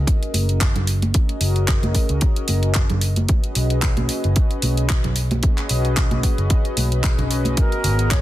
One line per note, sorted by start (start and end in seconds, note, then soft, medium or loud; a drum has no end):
0.00 0.45 C#4 medium
0.00 0.46 F#4 medium
0.00 0.46 G#4 medium
0.00 0.46 A#4 medium
0.00 0.46 D#5 medium
0.07 kick loud
0.07 closed hi-hat medium
0.23 closed hi-hat soft
0.34 0.72 F#1 medium
0.34 open hi-hat loud
0.34 high conga medium
0.49 0.58 C#4 medium
0.49 0.58 F#4 medium
0.49 0.59 G#4 medium
0.49 0.59 A#4 medium
0.49 0.59 D#5 medium
0.49 closed hi-hat soft
0.61 kick loud
0.61 clap loud
0.61 closed hi-hat loud
0.76 1.11 F#1 medium
0.76 closed hi-hat soft
0.76 low conga medium
0.87 open hi-hat loud
1.02 closed hi-hat soft
1.02 high conga medium
1.14 2.60 C#4 medium
1.14 2.60 F#4 medium
1.14 2.60 G#4 medium
1.14 2.60 A#4 medium
1.14 2.60 D#5 medium
1.14 kick loud
1.14 closed hi-hat medium
1.29 closed hi-hat soft
1.41 1.79 F#1 medium
1.41 open hi-hat loud
1.56 closed hi-hat soft
1.68 kick loud
1.68 clap loud
1.68 closed hi-hat medium
1.83 1.93 F#1 medium
1.83 closed hi-hat soft
1.83 high conga loud
1.95 kick medium
1.95 open hi-hat loud
2.09 2.20 C#2 medium
2.09 closed hi-hat soft
2.21 kick loud
2.21 closed hi-hat medium
2.36 closed hi-hat soft
2.48 2.86 F#1 medium
2.48 open hi-hat loud
2.48 high conga medium
2.63 2.73 C#4 medium
2.63 2.73 F#4 medium
2.63 2.73 G#4 medium
2.63 2.73 A#4 medium
2.63 2.73 D#5 medium
2.63 closed hi-hat soft
2.74 kick loud
2.74 clap loud
2.74 closed hi-hat medium
2.90 3.26 F#1 medium
2.90 closed hi-hat soft
2.90 low conga medium
3.01 open hi-hat loud
3.16 closed hi-hat soft
3.16 high conga medium
3.29 4.74 C#4 medium
3.29 4.74 F#4 medium
3.29 4.75 G#4 medium
3.29 4.75 B4 medium
3.29 4.75 D#5 medium
3.29 kick loud
3.29 closed hi-hat medium
3.44 closed hi-hat soft
3.55 3.94 B1 medium
3.55 open hi-hat loud
3.70 closed hi-hat soft
3.82 kick loud
3.82 clap loud
3.82 closed hi-hat medium
3.97 4.07 B1 medium
3.97 closed hi-hat soft
3.97 high conga loud
4.09 open hi-hat loud
4.24 4.34 F#1 medium
4.24 closed hi-hat soft
4.36 kick loud
4.36 closed hi-hat medium
4.51 closed hi-hat soft
4.62 5.01 B1 medium
4.62 open hi-hat loud
4.62 high conga medium
4.77 4.87 C#4 medium
4.77 4.87 F#4 medium
4.77 4.87 G#4 medium
4.77 4.87 B4 medium
4.77 4.87 D#5 medium
4.77 closed hi-hat soft
4.89 kick loud
4.89 clap loud
4.89 closed hi-hat medium
5.04 5.40 B1 medium
5.04 closed hi-hat soft
5.04 low conga medium
5.16 open hi-hat loud
5.31 closed hi-hat soft
5.31 high conga loud
5.42 6.74 C#4 medium
5.42 6.75 F#4 medium
5.42 6.75 G#4 medium
5.42 6.75 B4 medium
5.42 6.75 D#5 medium
5.42 kick loud
5.42 closed hi-hat medium
5.58 clap soft
5.58 closed hi-hat soft
5.69 6.08 B1 medium
5.69 open hi-hat loud
5.85 closed hi-hat soft
5.97 kick loud
5.97 clap loud
5.97 closed hi-hat medium
6.11 6.22 B1 medium
6.11 closed hi-hat soft
6.11 high conga loud
6.23 kick medium
6.23 open hi-hat loud
6.38 6.48 F#1 medium
6.38 closed hi-hat soft
6.50 kick loud
6.50 closed hi-hat medium
6.65 closed hi-hat soft
6.77 7.15 B1 medium
6.77 6.88 C#4 medium
6.77 6.89 F#4 medium
6.77 6.89 G#4 medium
6.77 6.89 B4 medium
6.77 6.89 D#5 loud
6.77 open hi-hat loud
6.77 high conga medium
6.91 7.54 C#4 medium
6.91 7.55 F#4 medium
6.91 7.55 G#4 medium
6.91 7.55 B4 medium
6.91 7.56 D#5 loud
6.91 closed hi-hat soft
7.04 kick loud
7.04 clap loud
7.04 closed hi-hat medium
7.18 7.54 B1 medium
7.18 closed hi-hat soft
7.18 low conga medium
7.31 open hi-hat loud
7.45 closed hi-hat soft
7.45 high conga medium
7.57 8.21 B3 medium
7.57 8.21 F#4 medium
7.57 8.21 G#4 medium
7.57 8.13 A#4 medium
7.57 8.21 A#4 medium
7.57 8.21 D#5 medium
7.57 kick loud
7.57 closed hi-hat medium
7.72 closed hi-hat soft
7.84 8.21 G#1 medium
7.84 open hi-hat loud
7.99 closed hi-hat soft
8.11 8.21 C#5 medium
8.11 kick loud
8.11 clap loud
8.11 closed hi-hat medium